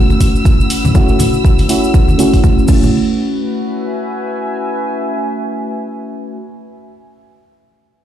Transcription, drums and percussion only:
0, 0, Header, 1, 2, 480
1, 0, Start_track
1, 0, Key_signature, 3, "minor"
1, 0, Tempo, 495868
1, 919, Time_signature, 4, 2, 24, 8
1, 7789, End_track
2, 0, Start_track
2, 0, Title_t, "Drums"
2, 97, Note_on_c, 9, 63, 77
2, 102, Note_on_c, 9, 69, 22
2, 194, Note_off_c, 9, 63, 0
2, 199, Note_off_c, 9, 69, 0
2, 199, Note_on_c, 9, 36, 55
2, 199, Note_on_c, 9, 46, 98
2, 199, Note_on_c, 9, 69, 93
2, 296, Note_off_c, 9, 36, 0
2, 296, Note_off_c, 9, 46, 0
2, 296, Note_off_c, 9, 69, 0
2, 343, Note_on_c, 9, 69, 33
2, 432, Note_on_c, 9, 63, 62
2, 439, Note_on_c, 9, 36, 106
2, 440, Note_off_c, 9, 69, 0
2, 442, Note_on_c, 9, 69, 50
2, 529, Note_off_c, 9, 63, 0
2, 536, Note_off_c, 9, 36, 0
2, 539, Note_off_c, 9, 69, 0
2, 585, Note_on_c, 9, 69, 24
2, 679, Note_on_c, 9, 46, 103
2, 680, Note_off_c, 9, 69, 0
2, 680, Note_on_c, 9, 69, 76
2, 776, Note_off_c, 9, 46, 0
2, 777, Note_off_c, 9, 69, 0
2, 819, Note_on_c, 9, 63, 76
2, 822, Note_on_c, 9, 64, 72
2, 822, Note_on_c, 9, 69, 37
2, 916, Note_off_c, 9, 63, 0
2, 918, Note_off_c, 9, 69, 0
2, 918, Note_on_c, 9, 69, 46
2, 919, Note_off_c, 9, 64, 0
2, 919, Note_on_c, 9, 36, 107
2, 1015, Note_off_c, 9, 69, 0
2, 1016, Note_off_c, 9, 36, 0
2, 1050, Note_on_c, 9, 69, 26
2, 1147, Note_off_c, 9, 69, 0
2, 1153, Note_on_c, 9, 63, 86
2, 1156, Note_on_c, 9, 64, 78
2, 1159, Note_on_c, 9, 46, 98
2, 1159, Note_on_c, 9, 69, 86
2, 1250, Note_off_c, 9, 63, 0
2, 1253, Note_off_c, 9, 64, 0
2, 1256, Note_off_c, 9, 46, 0
2, 1256, Note_off_c, 9, 69, 0
2, 1294, Note_on_c, 9, 69, 33
2, 1391, Note_off_c, 9, 69, 0
2, 1399, Note_on_c, 9, 36, 103
2, 1408, Note_on_c, 9, 69, 46
2, 1496, Note_off_c, 9, 36, 0
2, 1504, Note_off_c, 9, 69, 0
2, 1535, Note_on_c, 9, 69, 25
2, 1540, Note_on_c, 9, 63, 61
2, 1541, Note_on_c, 9, 46, 57
2, 1631, Note_off_c, 9, 69, 0
2, 1637, Note_off_c, 9, 46, 0
2, 1637, Note_off_c, 9, 63, 0
2, 1638, Note_on_c, 9, 46, 97
2, 1639, Note_on_c, 9, 69, 85
2, 1735, Note_off_c, 9, 46, 0
2, 1736, Note_off_c, 9, 69, 0
2, 1781, Note_on_c, 9, 69, 38
2, 1877, Note_off_c, 9, 69, 0
2, 1879, Note_on_c, 9, 36, 113
2, 1880, Note_on_c, 9, 69, 51
2, 1976, Note_off_c, 9, 36, 0
2, 1977, Note_off_c, 9, 69, 0
2, 2016, Note_on_c, 9, 63, 91
2, 2022, Note_on_c, 9, 69, 23
2, 2113, Note_off_c, 9, 63, 0
2, 2118, Note_off_c, 9, 69, 0
2, 2118, Note_on_c, 9, 46, 95
2, 2124, Note_on_c, 9, 69, 80
2, 2215, Note_off_c, 9, 46, 0
2, 2221, Note_off_c, 9, 69, 0
2, 2261, Note_on_c, 9, 36, 55
2, 2261, Note_on_c, 9, 46, 54
2, 2263, Note_on_c, 9, 69, 31
2, 2354, Note_on_c, 9, 63, 60
2, 2357, Note_off_c, 9, 46, 0
2, 2358, Note_off_c, 9, 36, 0
2, 2359, Note_off_c, 9, 69, 0
2, 2359, Note_on_c, 9, 36, 108
2, 2359, Note_on_c, 9, 69, 53
2, 2451, Note_off_c, 9, 63, 0
2, 2456, Note_off_c, 9, 36, 0
2, 2456, Note_off_c, 9, 69, 0
2, 2503, Note_on_c, 9, 69, 23
2, 2592, Note_off_c, 9, 69, 0
2, 2592, Note_on_c, 9, 69, 90
2, 2599, Note_on_c, 9, 36, 104
2, 2599, Note_on_c, 9, 49, 84
2, 2689, Note_off_c, 9, 69, 0
2, 2695, Note_off_c, 9, 36, 0
2, 2696, Note_off_c, 9, 49, 0
2, 2740, Note_on_c, 9, 69, 38
2, 2743, Note_on_c, 9, 63, 84
2, 2744, Note_on_c, 9, 64, 74
2, 2837, Note_off_c, 9, 69, 0
2, 2840, Note_off_c, 9, 63, 0
2, 2841, Note_off_c, 9, 64, 0
2, 7789, End_track
0, 0, End_of_file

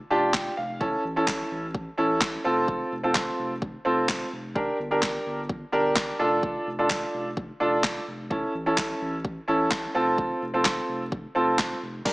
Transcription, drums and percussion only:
0, 0, Header, 1, 2, 480
1, 0, Start_track
1, 0, Tempo, 468750
1, 826, Time_signature, 4, 2, 24, 8
1, 12420, End_track
2, 0, Start_track
2, 0, Title_t, "Drums"
2, 342, Note_on_c, 9, 38, 86
2, 347, Note_on_c, 9, 39, 103
2, 349, Note_on_c, 9, 36, 110
2, 444, Note_off_c, 9, 38, 0
2, 450, Note_off_c, 9, 39, 0
2, 451, Note_off_c, 9, 36, 0
2, 827, Note_on_c, 9, 36, 106
2, 929, Note_off_c, 9, 36, 0
2, 1301, Note_on_c, 9, 38, 80
2, 1306, Note_on_c, 9, 39, 99
2, 1309, Note_on_c, 9, 36, 101
2, 1403, Note_off_c, 9, 38, 0
2, 1409, Note_off_c, 9, 39, 0
2, 1411, Note_off_c, 9, 36, 0
2, 1787, Note_on_c, 9, 36, 116
2, 1889, Note_off_c, 9, 36, 0
2, 2261, Note_on_c, 9, 38, 86
2, 2266, Note_on_c, 9, 39, 111
2, 2268, Note_on_c, 9, 36, 109
2, 2363, Note_off_c, 9, 38, 0
2, 2368, Note_off_c, 9, 39, 0
2, 2370, Note_off_c, 9, 36, 0
2, 2746, Note_on_c, 9, 36, 104
2, 2848, Note_off_c, 9, 36, 0
2, 3220, Note_on_c, 9, 38, 80
2, 3225, Note_on_c, 9, 39, 100
2, 3228, Note_on_c, 9, 36, 105
2, 3323, Note_off_c, 9, 38, 0
2, 3328, Note_off_c, 9, 39, 0
2, 3331, Note_off_c, 9, 36, 0
2, 3706, Note_on_c, 9, 36, 117
2, 3809, Note_off_c, 9, 36, 0
2, 4180, Note_on_c, 9, 38, 90
2, 4186, Note_on_c, 9, 39, 109
2, 4187, Note_on_c, 9, 36, 105
2, 4283, Note_off_c, 9, 38, 0
2, 4288, Note_off_c, 9, 39, 0
2, 4290, Note_off_c, 9, 36, 0
2, 4666, Note_on_c, 9, 36, 103
2, 4768, Note_off_c, 9, 36, 0
2, 5141, Note_on_c, 9, 38, 79
2, 5146, Note_on_c, 9, 39, 95
2, 5148, Note_on_c, 9, 36, 105
2, 5243, Note_off_c, 9, 38, 0
2, 5249, Note_off_c, 9, 39, 0
2, 5251, Note_off_c, 9, 36, 0
2, 5626, Note_on_c, 9, 36, 118
2, 5729, Note_off_c, 9, 36, 0
2, 6100, Note_on_c, 9, 38, 91
2, 6105, Note_on_c, 9, 39, 109
2, 6107, Note_on_c, 9, 36, 106
2, 6202, Note_off_c, 9, 38, 0
2, 6208, Note_off_c, 9, 39, 0
2, 6209, Note_off_c, 9, 36, 0
2, 6585, Note_on_c, 9, 36, 104
2, 6687, Note_off_c, 9, 36, 0
2, 7060, Note_on_c, 9, 38, 79
2, 7065, Note_on_c, 9, 39, 101
2, 7068, Note_on_c, 9, 36, 106
2, 7162, Note_off_c, 9, 38, 0
2, 7167, Note_off_c, 9, 39, 0
2, 7171, Note_off_c, 9, 36, 0
2, 7547, Note_on_c, 9, 36, 117
2, 7649, Note_off_c, 9, 36, 0
2, 8022, Note_on_c, 9, 38, 89
2, 8027, Note_on_c, 9, 39, 110
2, 8028, Note_on_c, 9, 36, 106
2, 8124, Note_off_c, 9, 38, 0
2, 8129, Note_off_c, 9, 39, 0
2, 8131, Note_off_c, 9, 36, 0
2, 8506, Note_on_c, 9, 36, 104
2, 8609, Note_off_c, 9, 36, 0
2, 8980, Note_on_c, 9, 38, 77
2, 8986, Note_on_c, 9, 39, 97
2, 8989, Note_on_c, 9, 36, 105
2, 9083, Note_off_c, 9, 38, 0
2, 9088, Note_off_c, 9, 39, 0
2, 9092, Note_off_c, 9, 36, 0
2, 9468, Note_on_c, 9, 36, 118
2, 9570, Note_off_c, 9, 36, 0
2, 9941, Note_on_c, 9, 38, 90
2, 9946, Note_on_c, 9, 39, 111
2, 9948, Note_on_c, 9, 36, 105
2, 10043, Note_off_c, 9, 38, 0
2, 10048, Note_off_c, 9, 39, 0
2, 10051, Note_off_c, 9, 36, 0
2, 10427, Note_on_c, 9, 36, 104
2, 10529, Note_off_c, 9, 36, 0
2, 10900, Note_on_c, 9, 38, 82
2, 10905, Note_on_c, 9, 39, 95
2, 10909, Note_on_c, 9, 36, 103
2, 11002, Note_off_c, 9, 38, 0
2, 11008, Note_off_c, 9, 39, 0
2, 11012, Note_off_c, 9, 36, 0
2, 11387, Note_on_c, 9, 36, 114
2, 11490, Note_off_c, 9, 36, 0
2, 11861, Note_on_c, 9, 38, 92
2, 11866, Note_on_c, 9, 39, 108
2, 11867, Note_on_c, 9, 36, 107
2, 11963, Note_off_c, 9, 38, 0
2, 11969, Note_off_c, 9, 39, 0
2, 11970, Note_off_c, 9, 36, 0
2, 12345, Note_on_c, 9, 36, 103
2, 12345, Note_on_c, 9, 38, 51
2, 12345, Note_on_c, 9, 49, 93
2, 12420, Note_off_c, 9, 36, 0
2, 12420, Note_off_c, 9, 38, 0
2, 12420, Note_off_c, 9, 49, 0
2, 12420, End_track
0, 0, End_of_file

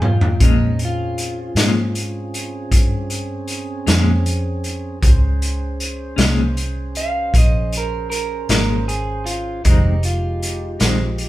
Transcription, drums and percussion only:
0, 0, Header, 1, 2, 480
1, 0, Start_track
1, 0, Tempo, 771208
1, 250, Time_signature, 12, 3, 24, 8
1, 7026, End_track
2, 0, Start_track
2, 0, Title_t, "Drums"
2, 12, Note_on_c, 9, 45, 70
2, 74, Note_off_c, 9, 45, 0
2, 133, Note_on_c, 9, 43, 76
2, 195, Note_off_c, 9, 43, 0
2, 252, Note_on_c, 9, 36, 94
2, 252, Note_on_c, 9, 42, 77
2, 314, Note_off_c, 9, 36, 0
2, 314, Note_off_c, 9, 42, 0
2, 493, Note_on_c, 9, 42, 49
2, 555, Note_off_c, 9, 42, 0
2, 734, Note_on_c, 9, 42, 57
2, 796, Note_off_c, 9, 42, 0
2, 972, Note_on_c, 9, 42, 79
2, 978, Note_on_c, 9, 38, 98
2, 1034, Note_off_c, 9, 42, 0
2, 1040, Note_off_c, 9, 38, 0
2, 1215, Note_on_c, 9, 42, 55
2, 1277, Note_off_c, 9, 42, 0
2, 1457, Note_on_c, 9, 42, 49
2, 1519, Note_off_c, 9, 42, 0
2, 1690, Note_on_c, 9, 36, 75
2, 1691, Note_on_c, 9, 42, 74
2, 1752, Note_off_c, 9, 36, 0
2, 1753, Note_off_c, 9, 42, 0
2, 1929, Note_on_c, 9, 42, 50
2, 1991, Note_off_c, 9, 42, 0
2, 2163, Note_on_c, 9, 42, 47
2, 2225, Note_off_c, 9, 42, 0
2, 2409, Note_on_c, 9, 42, 75
2, 2416, Note_on_c, 9, 38, 96
2, 2472, Note_off_c, 9, 42, 0
2, 2478, Note_off_c, 9, 38, 0
2, 2651, Note_on_c, 9, 42, 56
2, 2713, Note_off_c, 9, 42, 0
2, 2887, Note_on_c, 9, 42, 46
2, 2949, Note_off_c, 9, 42, 0
2, 3128, Note_on_c, 9, 36, 90
2, 3128, Note_on_c, 9, 42, 68
2, 3190, Note_off_c, 9, 36, 0
2, 3190, Note_off_c, 9, 42, 0
2, 3373, Note_on_c, 9, 42, 53
2, 3435, Note_off_c, 9, 42, 0
2, 3611, Note_on_c, 9, 42, 56
2, 3673, Note_off_c, 9, 42, 0
2, 3845, Note_on_c, 9, 42, 75
2, 3852, Note_on_c, 9, 38, 105
2, 3908, Note_off_c, 9, 42, 0
2, 3914, Note_off_c, 9, 38, 0
2, 4089, Note_on_c, 9, 42, 54
2, 4152, Note_off_c, 9, 42, 0
2, 4327, Note_on_c, 9, 42, 57
2, 4389, Note_off_c, 9, 42, 0
2, 4567, Note_on_c, 9, 36, 84
2, 4571, Note_on_c, 9, 42, 82
2, 4629, Note_off_c, 9, 36, 0
2, 4634, Note_off_c, 9, 42, 0
2, 4808, Note_on_c, 9, 42, 56
2, 4870, Note_off_c, 9, 42, 0
2, 5051, Note_on_c, 9, 42, 58
2, 5113, Note_off_c, 9, 42, 0
2, 5285, Note_on_c, 9, 42, 78
2, 5291, Note_on_c, 9, 38, 101
2, 5347, Note_off_c, 9, 42, 0
2, 5353, Note_off_c, 9, 38, 0
2, 5531, Note_on_c, 9, 42, 52
2, 5593, Note_off_c, 9, 42, 0
2, 5766, Note_on_c, 9, 42, 55
2, 5828, Note_off_c, 9, 42, 0
2, 6004, Note_on_c, 9, 42, 70
2, 6007, Note_on_c, 9, 36, 90
2, 6067, Note_off_c, 9, 42, 0
2, 6069, Note_off_c, 9, 36, 0
2, 6242, Note_on_c, 9, 42, 50
2, 6305, Note_off_c, 9, 42, 0
2, 6488, Note_on_c, 9, 42, 56
2, 6551, Note_off_c, 9, 42, 0
2, 6720, Note_on_c, 9, 42, 74
2, 6727, Note_on_c, 9, 38, 93
2, 6783, Note_off_c, 9, 42, 0
2, 6789, Note_off_c, 9, 38, 0
2, 6960, Note_on_c, 9, 42, 45
2, 7023, Note_off_c, 9, 42, 0
2, 7026, End_track
0, 0, End_of_file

